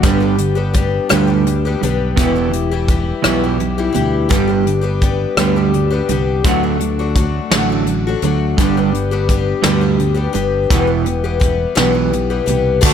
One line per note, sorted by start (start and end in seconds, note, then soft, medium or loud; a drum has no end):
0.03 0.98 G1 medium
0.03 0.22 G2 medium
0.03 0.22 D3 medium
0.03 0.22 G3 medium
0.03 0.21 B3 medium
0.03 0.20 D4 medium
0.03 0.19 G4 medium
0.03 kick loud
0.03 closed hi-hat medium
0.20 0.56 G3 soft
0.20 0.56 B3 soft
0.20 0.55 D4 soft
0.20 0.54 G4 soft
0.38 0.71 G2 medium
0.38 0.72 D3 medium
0.38 closed hi-hat medium
0.55 0.72 G3 soft
0.55 0.73 B3 soft
0.55 0.74 D4 soft
0.55 0.74 G4 medium
0.74 1.09 G3 medium
0.74 1.09 B3 medium
0.74 1.11 D4 medium
0.74 1.10 G4 medium
0.74 kick medium
0.74 closed hi-hat medium
1.09 1.74 D2 medium
1.09 1.28 G2 medium
1.09 1.28 D3 medium
1.09 1.28 G3 medium
1.09 1.27 B3 medium
1.09 1.27 D4 medium
1.09 1.26 G4 medium
1.09 cross-stick loud
1.09 closed hi-hat medium
1.27 1.65 G3 soft
1.27 1.64 B3 soft
1.27 1.64 D4 soft
1.27 1.64 G4 soft
1.46 1.79 G2 medium
1.46 1.79 D3 medium
1.46 closed hi-hat medium
1.65 1.82 G3 soft
1.65 1.82 B3 soft
1.65 1.82 D4 medium
1.65 1.83 G4 medium
1.81 2.14 B1 medium
1.81 2.14 G2 medium
1.81 2.14 D3 medium
1.81 2.18 G3 medium
1.81 2.18 B3 medium
1.81 2.18 D4 medium
1.81 2.18 G4 medium
1.81 closed hi-hat medium
2.17 3.11 E1 medium
2.17 2.36 E2 medium
2.17 2.36 B2 medium
2.17 2.36 E3 medium
2.17 2.36 G3 medium
2.17 2.35 E4 medium
2.17 2.34 G4 medium
2.17 kick loud
2.17 closed hi-hat medium
2.36 2.72 E3 soft
2.36 2.72 G3 soft
2.36 2.71 E4 soft
2.36 2.70 G4 soft
2.51 2.84 E2 medium
2.51 2.85 B2 medium
2.51 closed hi-hat medium
2.71 2.89 E3 soft
2.71 2.88 G3 medium
2.71 2.89 E4 medium
2.71 2.89 G4 medium
2.88 3.23 E3 medium
2.88 3.23 G3 medium
2.88 3.24 E4 medium
2.88 3.24 G4 medium
2.88 kick medium
2.88 closed hi-hat medium
3.24 3.88 B1 medium
3.24 3.42 E2 medium
3.24 3.42 B2 medium
3.24 3.42 E3 medium
3.24 3.42 G3 medium
3.24 3.43 E4 medium
3.24 3.42 G4 medium
3.24 cross-stick loud
3.24 closed hi-hat medium
3.44 3.78 E3 soft
3.44 3.78 G3 soft
3.44 3.77 E4 soft
3.44 3.77 G4 soft
3.60 3.92 E2 medium
3.60 3.92 B2 medium
3.60 closed hi-hat soft
3.78 3.91 E3 soft
3.78 3.93 G3 soft
3.78 3.94 E4 medium
3.78 3.95 G4 medium
3.93 4.27 D2 medium
3.93 4.27 E2 medium
3.93 4.27 B2 medium
3.93 4.30 E3 medium
3.93 4.29 G3 medium
3.93 4.30 E4 medium
3.93 4.30 G4 medium
3.93 closed hi-hat medium
4.29 5.25 G1 medium
4.29 4.48 G2 medium
4.29 4.49 D3 medium
4.29 4.49 G3 medium
4.29 4.48 B3 medium
4.29 4.48 D4 medium
4.29 4.46 G4 medium
4.29 kick loud
4.29 closed hi-hat medium
4.48 4.83 G3 soft
4.48 4.83 B3 soft
4.48 4.81 D4 soft
4.48 4.80 G4 medium
4.66 4.99 G2 medium
4.66 4.99 D3 medium
4.66 closed hi-hat medium
4.81 5.00 G3 soft
4.81 5.01 B3 medium
4.81 5.01 D4 medium
4.81 5.01 G4 medium
5.01 5.37 G3 medium
5.01 5.36 B3 medium
5.01 5.37 D4 medium
5.01 5.37 G4 medium
5.01 kick medium
5.01 closed hi-hat medium
5.37 6.00 D2 medium
5.37 5.55 G2 medium
5.37 5.56 D3 medium
5.37 5.56 G3 medium
5.37 5.56 B3 medium
5.37 5.55 D4 medium
5.37 5.55 G4 medium
5.37 cross-stick loud
5.37 closed hi-hat medium
5.56 5.92 G3 soft
5.56 5.91 B3 soft
5.56 5.90 D4 soft
5.56 5.89 G4 soft
5.73 6.06 G2 medium
5.73 6.06 D3 medium
5.73 closed hi-hat medium
5.91 6.09 G3 soft
5.91 6.10 B3 soft
5.91 6.09 D4 soft
5.91 6.09 G4 medium
6.08 6.40 C2 medium
6.08 6.41 G2 medium
6.08 6.41 D3 medium
6.08 6.44 G3 medium
6.08 6.44 B3 medium
6.08 6.45 D4 medium
6.08 6.46 G4 medium
6.08 closed hi-hat medium
6.44 7.38 D2 medium
6.44 6.63 D3 medium
6.44 6.63 F#3 medium
6.44 6.63 A3 medium
6.44 6.62 D4 medium
6.44 6.62 F#4 medium
6.44 kick loud
6.44 closed hi-hat medium
6.63 6.99 A3 soft
6.63 6.99 D4 soft
6.63 6.98 F#4 soft
6.80 7.12 D3 medium
6.80 7.12 F#3 medium
6.80 closed hi-hat medium
6.99 7.16 A3 soft
6.99 7.17 D4 medium
6.99 7.16 F#4 medium
7.15 7.51 F#3 medium
7.15 7.52 A3 medium
7.15 7.52 D4 medium
7.15 7.52 F#4 medium
7.15 kick medium
7.15 closed hi-hat medium
7.51 8.14 A1 medium
7.51 7.71 D3 medium
7.51 7.71 F#3 medium
7.51 7.71 A3 medium
7.51 7.71 D4 medium
7.51 7.69 F#4 medium
7.51 snare loud
7.51 closed hi-hat medium
7.70 8.06 A3 soft
7.70 8.06 D4 soft
7.70 8.05 F#4 soft
7.87 8.19 D3 medium
7.87 8.19 F#3 medium
7.87 closed hi-hat medium
8.07 8.23 A3 soft
8.07 8.24 D4 soft
8.07 8.24 F#4 medium
8.22 8.54 D2 medium
8.22 8.55 D3 medium
8.22 8.59 F#3 medium
8.22 8.59 A3 medium
8.22 8.59 D4 medium
8.22 8.59 F#4 medium
8.22 closed hi-hat medium
8.58 9.52 G1 medium
8.58 8.76 G2 medium
8.58 8.77 D3 medium
8.58 8.77 G3 medium
8.58 8.77 B3 medium
8.58 8.76 D4 medium
8.58 8.76 G4 medium
8.58 kick loud
8.58 closed hi-hat medium
8.77 9.12 G3 soft
8.77 9.12 B3 soft
8.77 9.11 D4 soft
8.77 9.10 G4 medium
8.92 9.25 G2 medium
8.92 9.25 D3 medium
8.92 closed hi-hat medium
9.11 9.28 G3 soft
9.11 9.29 B3 medium
9.11 9.30 D4 medium
9.11 9.29 G4 medium
9.29 9.64 G3 medium
9.29 9.64 B3 medium
9.29 9.65 D4 medium
9.29 9.65 G4 medium
9.29 kick medium
9.29 closed hi-hat medium
9.63 10.27 D2 medium
9.63 9.82 G2 medium
9.63 9.83 D3 medium
9.63 9.82 G3 medium
9.63 9.81 B3 medium
9.63 9.80 D4 medium
9.63 9.80 G4 medium
9.63 snare loud
9.63 closed hi-hat medium
9.81 10.16 G3 soft
9.81 10.15 B3 soft
9.81 10.14 D4 soft
9.81 10.13 G4 soft
9.99 10.31 G2 medium
9.99 10.32 D3 medium
9.99 closed hi-hat medium
10.15 10.32 G3 soft
10.15 10.32 B3 soft
10.15 10.33 D4 soft
10.15 10.34 G4 medium
10.33 10.67 G1 medium
10.33 10.67 G2 medium
10.33 10.67 D3 medium
10.33 10.70 G3 medium
10.33 10.70 B3 medium
10.33 10.70 D4 medium
10.33 10.71 G4 medium
10.33 closed hi-hat medium
10.70 11.65 E1 medium
10.70 10.89 E2 medium
10.70 10.89 B2 medium
10.70 10.88 E3 medium
10.70 10.87 G3 medium
10.70 10.86 B3 medium
10.70 10.86 G4 medium
10.70 kick loud
10.70 closed hi-hat medium
10.87 11.24 E3 soft
10.87 11.24 G3 soft
10.87 11.23 B3 soft
10.87 11.23 G4 soft
11.06 11.38 E2 medium
11.06 11.39 B2 medium
11.06 closed hi-hat medium
11.24 11.39 E3 soft
11.24 11.38 G3 soft
11.24 11.40 B3 medium
11.24 11.40 G4 medium
11.40 11.75 E3 medium
11.40 11.75 G3 medium
11.40 11.74 B3 medium
11.40 11.75 G4 medium
11.40 kick medium
11.40 closed hi-hat medium
11.75 12.40 B1 medium
11.75 11.94 E2 medium
11.75 11.94 B2 medium
11.75 11.94 E3 medium
11.75 11.93 G3 medium
11.75 11.94 B3 medium
11.75 11.91 G4 medium
11.75 snare medium
11.75 closed hi-hat medium
11.93 12.30 E3 soft
11.93 12.30 G3 soft
11.93 12.29 B3 soft
11.93 12.29 G4 soft
12.13 12.45 E2 medium
12.13 12.45 B2 medium
12.13 closed hi-hat medium
12.30 12.45 E3 soft
12.30 12.45 G3 soft
12.30 12.46 B3 soft
12.30 12.47 G4 medium
12.46 12.79 C2 medium
12.46 12.81 E2 medium
12.46 12.81 B2 medium
12.46 12.80 E3 medium
12.46 12.81 G3 medium
12.46 12.81 B3 medium
12.46 12.81 G4 medium
12.46 closed hi-hat medium
12.81 12.93 D2 loud
12.81 12.93 D3 medium
12.81 12.93 A3 medium
12.81 12.93 D4 medium
12.81 12.93 F#4 loud
12.81 kick loud
12.81 crash loud
12.81 tambourine medium
12.86 12.93 F#4 loud